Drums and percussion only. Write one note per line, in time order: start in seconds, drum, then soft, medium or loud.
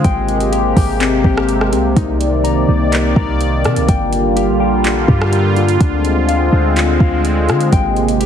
0.04 kick loud
0.04 closed hi-hat medium
0.28 closed hi-hat soft
0.40 closed hi-hat medium
0.53 closed hi-hat medium
0.77 kick loud
0.77 open hi-hat medium
1.01 clap loud
1.01 closed hi-hat medium
1.24 kick loud
1.37 cross-stick loud
1.49 closed hi-hat medium
1.61 cross-stick medium
1.73 closed hi-hat medium
1.96 kick loud
1.96 closed hi-hat medium
2.21 closed hi-hat medium
2.45 closed hi-hat medium
2.92 clap loud
2.92 closed hi-hat medium
3.16 kick loud
3.41 closed hi-hat medium
3.64 cross-stick loud
3.64 closed hi-hat soft
3.76 closed hi-hat medium
3.88 kick loud
3.88 closed hi-hat medium
4.13 closed hi-hat medium
4.37 closed hi-hat medium
4.85 clap loud
4.85 closed hi-hat medium
5.08 kick loud
5.22 cross-stick loud
5.33 closed hi-hat medium
5.56 closed hi-hat soft
5.68 closed hi-hat medium
5.80 kick loud
5.80 closed hi-hat medium
6.05 closed hi-hat medium
6.29 closed hi-hat medium
6.76 clap loud
6.76 closed hi-hat medium
7.00 kick loud
7.25 closed hi-hat medium
7.49 cross-stick loud
7.49 closed hi-hat soft
7.61 closed hi-hat medium
7.72 kick loud
7.72 closed hi-hat medium
7.96 closed hi-hat soft
8.08 closed hi-hat medium
8.21 closed hi-hat medium